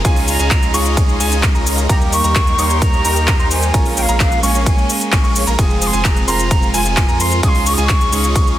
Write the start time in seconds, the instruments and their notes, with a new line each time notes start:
0.04 sub bass C#2, string section C#3 C#4 D#4 F4, clean electric guitar G#3 C#4 D#4 F4, supersaw synth G#3 C#4 D#4 F4 G#4, flute G#5, grand piano G#5, kick, closed hi-hat, ride, shaker
0.16 open hi-hat, shaker
0.28 flute A#5, open hi-hat, shaker
0.39 sub bass C#2, supersaw synth G#3 C#4 D#4 F4 G#4, grand piano G#5, closed hi-hat, shaker
0.51 kick, clap, closed hi-hat, ride, shaker
0.63 closed hi-hat, shaker
0.73 sub bass C#2, clean electric guitar G#3 C#4 D#4 G#4, supersaw synth G#3 C#4 D#4 F4 C#5, grand piano C#6, open hi-hat, shaker
0.86 closed hi-hat, shaker
0.97 kick, closed hi-hat, ride, shaker
1.09 shaker
1.20 sub bass C#2, supersaw synth G#3 C#4 D#4 F4 G#4, grand piano G#5, open hi-hat, shaker
1.32 closed hi-hat, shaker
1.43 kick, clap, closed hi-hat, ride, shaker
1.55 sub bass C#2, supersaw synth G#3 C#4 D#4 F4 A#4, grand piano A#5, shaker
1.67 open hi-hat, shaker
1.78 closed hi-hat, shaker
1.88 sub bass D#2, string section D#3 D#4 G4 A#4, clean electric guitar G3 A#3 D#4 G4, supersaw synth A#3, grand piano A#5, flute A#5, kick, closed hi-hat, ride, shaker
2.01 shaker
2.13 flute C#6, open hi-hat, shaker
2.24 sub bass D#2, supersaw synth G3 A#3 D#4 G4 A#4, grand piano A#5, closed hi-hat, shaker
2.36 kick, clap, closed hi-hat, ride, shaker
2.47 closed hi-hat, shaker
2.58 sub bass D#2, clean electric guitar G3 A#3 D#4 A#4, supersaw synth G3 A#3 D#4 G4 C#5, grand piano C#6, flute D#6, open hi-hat, shaker
2.64 flute C6
2.70 closed hi-hat, shaker
2.82 flute A#5, kick, closed hi-hat, ride, shaker
2.93 shaker
3.05 sub bass D#2, supersaw synth G3 A#3 D#4 G4 A#4, grand piano A#5, open hi-hat, shaker
3.16 closed hi-hat, shaker
3.28 kick, clap, closed hi-hat, ride, shaker
3.39 sub bass D#2, supersaw synth G3 A#3 D#4 G4 C5, grand piano C6, shaker
3.51 flute G#5, open hi-hat, shaker
3.63 closed hi-hat, shaker
3.73 sub bass A#1, clean electric guitar G#3 A#3 C#4 F4, string section G#3 A#3 C#4, supersaw synth A#3 C#4 F4 G#4 A#4, grand piano A#5, kick, closed hi-hat, ride, shaker
3.86 open hi-hat, shaker
3.97 flute G5, open hi-hat, shaker
4.02 flute F5
4.09 sub bass A#1, supersaw synth A#3 C#4 F4 G#4 A#4, grand piano A#5, closed hi-hat, shaker
4.20 flute F5, kick, clap, closed hi-hat, ride, shaker
4.32 closed hi-hat, shaker
4.42 sub bass A#1, clean electric guitar G#3 A#3 C#4 F5, supersaw synth A#3 C#4 F4 G#4 C#5, flute G#5, grand piano C#6, open hi-hat, shaker
4.55 closed hi-hat, shaker
4.66 flute G#5, kick, closed hi-hat, ride, shaker
4.78 shaker
4.90 open hi-hat, shaker
5.01 closed hi-hat, shaker
5.12 sub bass A#1, supersaw synth A#3 C#4 F4 G#4 C#5, grand piano C#6, kick, clap, closed hi-hat, ride, shaker
5.24 sub bass A#1, supersaw synth A#3 C#4 F4 G#4 C#5, grand piano C#6, shaker
5.36 open hi-hat, shaker
5.47 sub bass A#1, supersaw synth A#3 C#4 F4 G#4 A#4, grand piano A#5, closed hi-hat, shaker
5.58 sub bass F1, supersaw synth F3 G#3 C4 G#4, clean electric guitar G#3 C4 F4 G#4, string section C4 F4, grand piano G#5, kick, closed hi-hat, ride, shaker
5.70 shaker
5.82 flute D#6, open hi-hat, shaker
5.87 flute C6
5.93 sub bass F1, supersaw synth F3 G#3 C4 F4 G#4, grand piano G#5, closed hi-hat, shaker
6.05 flute A#5, kick, clap, closed hi-hat, ride, shaker
6.16 closed hi-hat, shaker
6.27 sub bass F1, supersaw synth F3 G#3 C4 F4 C5, clean electric guitar G#3 C4 F4 A#4, flute A#5, grand piano C6, open hi-hat, shaker
6.40 closed hi-hat, shaker
6.51 kick, closed hi-hat, ride, shaker
6.63 shaker
6.74 sub bass F1, supersaw synth F3 G#3 C4 F4 G#4, grand piano G#5, flute G#5, open hi-hat, shaker
6.86 closed hi-hat, shaker
6.97 kick, clap, closed hi-hat, ride, shaker
7.09 sub bass F2, supersaw synth F3 G#3 C4 F4 A#4, grand piano A#5, shaker
7.20 flute C6, open hi-hat, shaker
7.32 closed hi-hat, shaker
7.42 sub bass C#2, string section C#3 C#4 D#4, clean electric guitar G#3 C#4 D#4 F4, supersaw synth G#3 C#4 D#4 F4 G#4, grand piano G#5, flute D#6, kick, closed hi-hat, ride, shaker
7.48 flute C6
7.55 open hi-hat, shaker
7.66 flute C#6, open hi-hat, shaker
7.73 flute D#6
7.78 sub bass C#2, supersaw synth G#3 C#4 D#4 F4 G#4, grand piano G#5, flute D#6, closed hi-hat, shaker
7.85 flute C#6
7.89 kick, clap, closed hi-hat, ride, shaker
8.01 closed hi-hat, shaker
8.11 sub bass C#2, clean electric guitar G#3 C#4 D#4 G#4, supersaw synth G#3 C#4 D#4 F4 C#5, grand piano C#6, open hi-hat, shaker
8.24 closed hi-hat, shaker
8.36 kick, closed hi-hat, ride, shaker
8.47 shaker